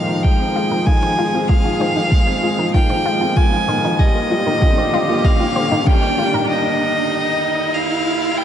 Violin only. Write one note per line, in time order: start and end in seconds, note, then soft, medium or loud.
0.00 0.25 F5 medium
0.23 0.88 G5 medium
0.86 1.50 G#5 loud
1.48 2.73 F5 loud
2.74 3.38 G5 loud
3.37 4.01 G#5 loud
4.00 5.26 D#5 loud
5.25 5.89 F5 medium
5.87 6.49 G5 loud
6.49 7.76 D#5 loud
7.74 8.39 F5 medium
8.38 8.44 G5 medium